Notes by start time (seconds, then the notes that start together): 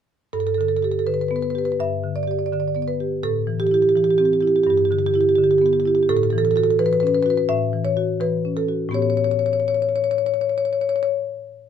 0.33 G2 A4
0.40 A4
0.47 A4
0.54 D3 A4
0.61 A4
0.68 A4
0.77 A4
0.82 G4 A4
0.92 A4
0.99 A4
1.07 D3 B4
1.14 B4
1.21 B4
1.28 B3 B4
1.36 B4
1.43 B4
1.50 B4
1.55 G4 B4
1.65 B4
1.72 B4
1.80 G2 E5
2.04 D3
2.16 D5
2.23 D5
2.27 G4 D5
2.39 D5
2.46 D5
2.53 D3 D5
2.60 D5
2.68 D5
2.75 B3 D5
2.82 D5
2.88 B4
3.00 G4
3.23 A2 A4
3.47 E3
3.60 G4
3.67 G4
3.71 E4 G4
3.82 G4
3.89 G4
3.96 E3 G4
4.04 G4
4.11 G4
4.18 C4 G4
4.25 G4
4.33 G4
4.41 E4 G4
4.47 G4
4.56 G4
4.63 G2 G4
4.70 G4
4.77 G4
4.85 G4
4.91 D3 G4
4.99 G4
5.06 G4
5.14 E4 G4
5.21 G4
5.29 G4
5.35 D3 G4
5.44 G4
5.51 G4
5.58 B3 G4
5.66 G4
5.73 G4
5.80 G4
5.86 E4 G4
5.95 G4
6.03 G4
6.09 A2 A4
6.17 A4
6.23 A4
6.30 E3 A4
6.38 A4
6.45 A4
6.51 A4
6.56 F#4 A4
6.64 A4
6.70 A4
6.79 E3 B4
6.86 B4
6.93 B4
7.00 C#4 B4
7.07 B4
7.14 B4
7.23 F#4 B4
7.30 B4
7.38 B4
7.49 A2 E5
7.73 E3
7.85 C#5
7.97 F#4
8.21 E3 B4
8.45 C#4
8.57 A4
8.69 F#4
8.89 A2 B3 G4
8.94 C#5
9.02 C#5
9.10 C#5
9.17 C#5
9.24 C#5
9.31 C#5
9.39 C#5
9.46 C#5
9.53 C#5
9.60 C#5
9.68 C#5
9.74 C#5
9.82 C#5
9.89 C#5
9.96 C#5
10.04 C#5
10.11 C#5
10.18 C#5
10.26 C#5
10.34 C#5
10.41 C#5
10.49 C#5
10.58 C#5
10.65 C#5
10.73 C#5
10.81 C#5
10.89 C#5
10.96 C#5
11.03 C#5